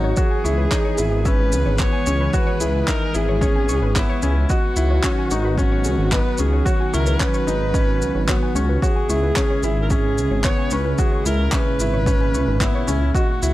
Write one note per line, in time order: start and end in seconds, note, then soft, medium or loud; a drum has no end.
0.00 0.13 G#1 medium
0.00 0.13 D#3 medium
0.00 0.13 F#3 medium
0.00 0.13 A#3 medium
0.00 0.14 D#4 medium
0.00 0.13 F#4 medium
0.00 0.20 F#4 loud
0.00 0.14 C#5 medium
0.16 4.45 E3 medium
0.16 4.45 G#3 medium
0.16 10.94 B3 medium
0.16 0.41 F#4 medium
0.16 4.45 G#4 medium
0.16 1.29 G#4 loud
0.16 0.28 C#5 loud
0.16 kick loud
0.16 shaker medium
0.31 0.38 G#5 medium
0.44 0.67 C#2 medium
0.44 0.68 E4 medium
0.44 0.51 C#6 medium
0.44 shaker medium
0.58 0.68 B4 medium
0.71 0.95 D#4 medium
0.71 0.78 C#5 medium
0.71 kick loud
0.71 clap medium
0.71 shaker medium
0.85 0.92 C#5 medium
0.98 1.54 G#1 medium
0.98 1.21 E4 medium
0.98 1.05 G#4 medium
0.98 shaker medium
1.25 1.72 C#4 medium
1.25 1.81 B4 loud
1.25 1.32 E5 medium
1.25 kick loud
1.25 shaker medium
1.52 1.64 C#2 loud
1.52 shaker medium
1.66 1.88 G#1 loud
1.66 1.76 C#5 medium
1.78 2.03 B3 medium
1.78 1.90 C#5 loud
1.78 2.37 C#5 loud
1.78 kick loud
1.78 clap medium
1.78 shaker medium
1.93 2.00 G#5 medium
2.06 2.29 C#2 medium
2.06 2.30 C#4 medium
2.06 2.14 C#6 medium
2.06 shaker medium
2.20 2.31 B4 medium
2.33 2.57 F#4 medium
2.33 2.91 B4 loud
2.33 2.41 C#5 medium
2.33 kick loud
2.33 shaker medium
2.47 2.54 C#5 loud
2.60 2.83 C#2 medium
2.60 2.84 E4 medium
2.60 2.68 G#4 medium
2.60 shaker medium
2.88 3.11 D#4 medium
2.88 3.17 A#4 loud
2.88 2.95 E5 medium
2.88 kick medium
2.88 clap medium
2.88 shaker medium
3.14 3.70 G#1 medium
3.14 3.38 E4 medium
3.14 3.99 G#4 loud
3.14 shaker medium
3.29 3.39 C#5 medium
3.41 3.88 C#4 loud
3.41 3.53 C#5 loud
3.41 kick loud
3.41 shaker medium
3.56 3.62 G#5 medium
3.69 3.80 C#2 loud
3.69 3.76 C#6 medium
3.69 shaker medium
3.82 4.04 G#1 loud
3.82 3.93 B4 medium
3.96 4.19 B3 medium
3.96 4.53 E4 loud
3.96 4.03 C#5 medium
3.96 kick loud
3.96 clap medium
3.96 shaker medium
4.09 4.16 C#5 loud
4.22 4.45 C#2 loud
4.22 4.46 C#4 medium
4.22 4.30 G#4 medium
4.22 shaker medium
4.50 8.78 D#3 medium
4.50 8.78 F#3 medium
4.50 4.73 F#4 medium
4.50 8.78 F#4 medium
4.50 5.57 F#4 loud
4.50 4.57 D#5 medium
4.50 kick loud
4.50 shaker medium
4.76 4.99 C#2 medium
4.76 5.00 E4 medium
4.76 shaker medium
4.91 5.01 C#5 medium
5.03 5.27 C#4 medium
5.03 5.15 C#5 loud
5.03 kick loud
5.03 clap medium
5.03 shaker medium
5.18 5.25 G#5 medium
5.31 5.86 G#1 medium
5.31 5.54 D#4 medium
5.31 5.38 C#6 medium
5.31 shaker medium
5.45 5.55 B4 medium
5.58 6.04 C#4 loud
5.58 6.13 F#4 loud
5.58 5.65 C#5 medium
5.58 kick loud
5.58 shaker medium
5.72 5.79 C#5 loud
5.84 5.96 C#2 loud
5.84 5.92 G#4 medium
5.84 shaker medium
5.98 6.21 G#1 loud
6.12 6.35 B3 medium
6.12 6.41 B4 loud
6.12 6.19 D#5 medium
6.12 kick loud
6.12 clap loud
6.12 shaker medium
6.38 6.61 C#2 medium
6.38 6.62 C#4 medium
6.38 6.68 G#4 medium
6.38 shaker medium
6.53 6.63 C#5 medium
6.65 6.89 F#4 medium
6.65 6.95 F#4 loud
6.65 6.77 C#5 loud
6.65 kick loud
6.65 shaker medium
6.80 6.87 G#5 medium
6.93 7.16 C#2 loud
6.93 7.17 E4 medium
6.93 7.21 A#4 loud
6.93 7.00 C#6 medium
6.93 shaker medium
7.06 7.17 B4 medium
7.06 shaker soft
7.20 7.43 C#4 medium
7.20 8.30 B4 loud
7.20 7.28 C#5 medium
7.20 kick loud
7.20 clap medium
7.20 shaker medium
7.34 7.41 C#5 loud
7.34 shaker soft
7.47 8.03 G#1 medium
7.47 7.70 D#4 medium
7.47 7.54 G#4 medium
7.47 shaker medium
7.74 8.20 C#4 medium
7.74 7.81 D#5 medium
7.74 kick loud
7.74 shaker medium
8.01 8.12 C#2 loud
8.01 shaker medium
8.15 8.37 G#1 loud
8.15 8.25 C#5 medium
8.28 8.52 B3 medium
8.28 8.83 F#4 medium
8.28 8.39 C#5 loud
8.28 kick loud
8.28 clap loud
8.28 shaker soft
8.43 8.49 G#5 medium
8.55 8.77 C#2 medium
8.55 8.79 C#4 medium
8.55 8.63 C#6 medium
8.55 shaker medium
8.69 8.79 B4 medium
8.82 13.11 C#3 medium
8.82 13.11 G#3 medium
8.82 13.11 E4 medium
8.82 9.06 F#4 medium
8.82 9.80 G#4 loud
8.82 8.93 C#5 loud
8.82 kick loud
8.82 shaker medium
8.96 9.03 G#5 medium
9.09 9.32 C#2 loud
9.09 9.32 E4 medium
9.09 9.17 C#6 medium
9.09 shaker medium
9.23 9.33 B4 medium
9.36 9.60 C#4 medium
9.36 9.43 C#5 medium
9.36 kick loud
9.36 clap medium
9.36 shaker medium
9.50 9.57 C#5 loud
9.63 10.19 G#1 medium
9.63 9.87 E4 medium
9.63 9.70 G#4 medium
9.63 shaker medium
9.83 9.91 A#4 medium
9.90 10.37 C#4 medium
9.90 10.46 G#4 loud
9.90 9.98 E5 medium
9.90 kick loud
9.90 shaker medium
10.18 10.29 C#2 medium
10.18 shaker medium
10.31 10.53 G#1 loud
10.31 10.41 C#5 medium
10.44 10.68 B3 medium
10.44 10.74 C#5 loud
10.44 10.55 C#5 medium
10.44 kick loud
10.44 clap medium
10.44 shaker medium
10.58 10.65 G#5 medium
10.71 10.94 C#2 medium
10.71 10.95 C#4 medium
10.71 11.00 B4 loud
10.71 10.79 C#6 medium
10.71 shaker medium
10.85 10.95 B4 medium
10.98 13.54 A#2 medium
10.98 11.22 F#4 loud
10.98 11.28 G#4 loud
10.98 11.06 C#5 medium
10.98 kick loud
10.98 shaker medium
11.12 11.19 C#5 medium
11.25 11.48 C#2 loud
11.25 11.49 E4 medium
11.25 11.33 G#4 medium
11.25 11.54 A#4 loud
11.25 shaker medium
11.52 11.76 C#4 medium
11.52 12.63 B4 loud
11.52 11.59 E5 medium
11.52 kick loud
11.52 clap medium
11.52 shaker medium
11.80 12.35 G#1 medium
11.80 12.03 E4 medium
11.80 shaker medium
11.93 12.04 C#5 medium
12.06 12.53 C#4 loud
12.06 12.17 C#5 loud
12.06 kick loud
12.06 shaker medium
12.21 12.27 G#5 medium
12.34 12.45 C#2 loud
12.34 12.41 C#6 medium
12.34 shaker medium
12.47 12.70 G#1 loud
12.47 12.58 B4 medium
12.60 12.84 B3 medium
12.60 13.15 E4 loud
12.60 12.68 C#5 medium
12.60 kick loud
12.60 clap medium
12.60 shaker medium
12.75 12.82 C#5 loud
12.87 13.10 C#2 medium
12.87 13.11 C#4 medium
12.87 12.95 G#4 medium
12.87 shaker medium
13.14 13.54 D#3 medium
13.14 13.54 F#3 medium
13.14 13.54 F#4 medium
13.14 13.38 F#4 medium
13.14 13.54 F#4 loud
13.14 13.22 D#5 medium
13.14 kick loud
13.14 shaker medium
13.42 13.54 C#2 medium
13.42 13.54 E4 medium
13.42 shaker medium